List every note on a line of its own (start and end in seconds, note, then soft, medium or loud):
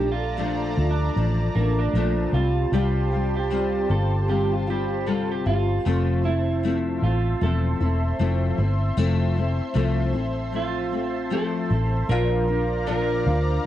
0.00 0.73 A#1 loud
0.00 0.37 F3 soft
0.00 0.37 A3 soft
0.00 2.30 A3 medium
0.00 0.38 D4 medium
0.00 0.11 G4 loud
0.00 2.31 D5 medium
0.00 12.06 A5 medium
0.00 2.31 A#5 loud
0.12 0.86 F4 loud
0.37 0.77 A#2 medium
0.37 0.77 F3 medium
0.37 0.77 A3 medium
0.37 0.76 D4 medium
0.77 1.09 D2 medium
0.77 1.16 F3 soft
0.77 1.16 A3 soft
0.77 1.16 D4 medium
0.91 1.27 D4 medium
1.16 1.48 A1 loud
1.16 1.56 F3 medium
1.16 1.55 A3 medium
1.16 1.54 D4 medium
1.55 1.87 A1 medium
1.55 1.95 F3 soft
1.55 1.95 A3 medium
1.55 1.77 A#3 medium
1.55 1.94 D4 medium
1.79 2.35 D4 medium
1.93 2.25 A#1 medium
1.93 2.34 A#2 medium
1.93 2.34 F3 medium
1.93 2.35 A3 medium
1.93 2.33 D4 medium
2.33 2.64 C2 loud
2.33 2.72 G3 soft
2.33 2.73 C4 soft
2.33 2.73 F4 soft
2.33 2.73 F4 medium
2.33 5.81 G4 medium
2.33 5.81 C5 medium
2.33 12.05 C6 medium
2.72 3.86 C2 loud
2.72 3.12 C3 medium
2.72 3.12 G3 medium
2.72 3.12 C4 loud
2.72 3.10 F4 loud
2.72 3.36 G4 loud
3.11 3.50 G3 soft
3.11 3.51 C4 soft
3.11 3.51 F4 medium
3.37 3.90 G4 medium
3.50 3.90 C3 medium
3.50 3.90 G3 medium
3.50 3.89 C4 medium
3.50 3.87 F4 medium
3.89 5.42 G1 medium
3.89 4.28 G3 soft
3.89 4.29 C4 soft
3.89 4.28 F4 medium
3.89 4.29 A4 medium
4.28 4.68 C3 medium
4.28 4.68 G3 medium
4.28 4.67 C4 medium
4.28 4.66 F4 medium
4.28 4.53 G4 medium
4.53 4.69 F4 medium
4.67 5.06 G3 soft
4.67 5.06 C4 medium
4.67 5.07 F4 medium
4.67 5.07 G4 medium
5.06 5.46 C3 medium
5.06 5.46 G3 medium
5.06 5.46 C4 medium
5.06 5.45 F4 medium
5.06 5.31 A4 medium
5.32 5.46 G4 medium
5.46 5.77 G1 medium
5.46 5.86 G3 soft
5.46 5.85 C4 soft
5.46 5.85 F4 medium
5.46 6.21 F4 medium
5.84 6.99 F1 loud
5.84 6.24 F3 medium
5.84 6.25 A3 medium
5.84 6.24 C4 medium
5.84 13.66 C5 medium
5.84 12.05 E5 medium
6.24 6.63 A3 soft
6.24 6.64 C4 medium
6.24 6.63 E4 medium
6.24 7.05 E4 medium
6.63 7.02 F3 medium
6.63 7.03 A3 medium
6.63 7.02 C4 medium
6.63 7.03 E4 medium
7.02 7.34 A1 medium
7.02 7.41 A3 soft
7.02 7.42 C4 soft
7.02 7.43 F4 medium
7.41 7.73 E1 loud
7.41 7.80 F3 medium
7.41 7.81 A3 medium
7.41 7.81 C4 medium
7.41 7.79 E4 medium
7.41 8.55 A4 medium
7.80 8.12 E1 medium
7.80 8.19 A3 soft
7.80 8.19 C4 medium
7.80 8.19 E4 medium
8.19 8.51 F1 medium
8.19 8.58 F3 medium
8.19 8.59 A3 medium
8.19 8.58 C4 medium
8.19 8.56 E4 medium
8.58 8.90 G1 medium
8.58 8.96 A3 soft
8.58 8.97 C4 medium
8.58 8.97 E4 medium
8.97 9.60 F1 loud
8.97 9.36 F3 loud
8.97 9.37 A3 loud
8.97 9.36 C4 loud
8.97 9.34 E4 loud
9.36 9.74 A3 medium
9.36 9.74 C4 medium
9.36 9.75 E4 medium
9.74 10.14 C2 loud
9.74 10.14 F3 loud
9.74 10.14 A3 loud
9.74 10.13 C4 loud
9.74 10.12 E4 loud
10.13 11.66 A1 medium
10.13 10.52 A3 medium
10.13 10.53 C4 soft
10.13 10.53 E4 medium
10.52 10.92 F3 medium
10.52 10.92 A3 medium
10.52 10.91 C4 medium
10.52 11.29 F4 medium
10.93 11.30 A3 soft
10.93 11.31 C4 soft
11.30 11.70 F3 medium
11.30 11.70 A3 medium
11.30 11.71 C4 medium
11.30 11.69 E4 loud
11.30 12.09 A4 medium
11.70 12.02 A1 medium
11.70 12.11 A3 soft
11.70 12.10 C4 medium
11.70 12.09 E4 soft
12.08 13.22 A#1 loud
12.08 12.48 A#2 medium
12.08 12.49 F3 medium
12.08 12.48 D4 medium
12.08 12.46 F4 loud
12.08 12.86 A#4 loud
12.08 13.66 D5 medium
12.08 13.66 F5 medium
12.08 13.66 A#5 medium
12.48 12.87 D4 medium
12.48 12.87 F4 soft
12.87 13.26 A#2 medium
12.87 13.26 F3 medium
12.87 13.26 D4 loud
12.87 13.24 F4 loud
12.87 13.66 A#4 medium
13.25 13.58 D2 medium
13.25 13.65 D4 medium
13.25 13.65 F4 soft